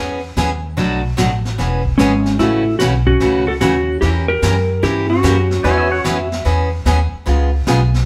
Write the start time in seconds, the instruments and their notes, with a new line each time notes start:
Already playing: upright bass E2, steel-string acoustic guitar E3 B3 C#4 G#4
0.37 upright bass D#2, steel-string acoustic guitar E3 B3 C#4 G#4, snare, hi-hat pedal
0.77 upright bass B1, steel-string acoustic guitar B2 F#3 A3 D4 F#4, brush sweep, snare
1.17 upright bass A1, steel-string acoustic guitar B2 F#3 A3 D4 F#4, snare, hi-hat pedal
1.45 snare
1.58 upright bass E1, steel-string acoustic guitar E3 B3 C#4 G#4, brush sweep, snare
1.85 kick
1.98 upright bass G#1, steel-string acoustic guitar E3 B3 C#4 G#4, hollow-body jazz guitar G#3, snare, hi-hat pedal
2.26 snare
2.39 upright bass A1, steel-string acoustic guitar C#3 E3 A3 C#4 F#4, hollow-body jazz guitar A3, electric slide guitar E4, brush sweep, snare
2.79 upright bass B1, steel-string acoustic guitar C#3 E3 A3 C#4 F#4, hollow-body jazz guitar C#4, snare, hi-hat pedal
3.06 hollow-body jazz guitar C#4, electric slide guitar F#4, kick
3.20 steel-string acoustic guitar C#3 E3 A3 C#4 F#4, brush sweep, snare
3.47 hollow-body jazz guitar F#4, electric slide guitar A4
3.61 upright bass D#2, steel-string acoustic guitar C#3 E3 A3 C#4 F#4, hollow-body jazz guitar C#4, snare, hi-hat pedal
4.01 upright bass E2, steel-string acoustic guitar E3 A#3 C#4 G4 A#4, hollow-body jazz guitar E4, brush sweep, snare
4.28 hollow-body jazz guitar G4, electric slide guitar A#4
4.42 upright bass F#2, steel-string acoustic guitar E3 A#3 C#4 G4 A#4, snare, hi-hat pedal
4.83 upright bass G2, steel-string acoustic guitar E3 A#3 C#4 G4 A#4, hollow-body jazz guitar E4, brush sweep, snare
5.10 hollow-body jazz guitar C#4, electric slide guitar F#4
5.23 upright bass F#2, steel-string acoustic guitar E3 A#3 C#4 G4 A#4, snare, hi-hat pedal
5.51 snare
5.64 upright bass E2, steel-string acoustic guitar E3 B3 C#4 G#4, pedal steel guitar E4 C#5, brush sweep, snare
5.77 pedal steel guitar G#4 E5
5.91 pedal steel guitar C#5 F#5
6.04 upright bass F2, steel-string acoustic guitar E3 B3 C#4 G#4, pedal steel guitar E5, snare, hi-hat pedal
6.32 snare
6.45 upright bass E2, steel-string acoustic guitar E3 B3 C#4 G#4, brush sweep, snare
6.85 upright bass D#2, steel-string acoustic guitar E3 B3 C#4 G#4, snare, hi-hat pedal
7.13 muted upright bass stroke
7.26 upright bass C#2, steel-string acoustic guitar C#3 G#3 B3 F4 G#4, brush sweep, snare
7.67 upright bass B1, steel-string acoustic guitar C#3 G#3 B3 F4 G#4, snare, hi-hat pedal
7.94 snare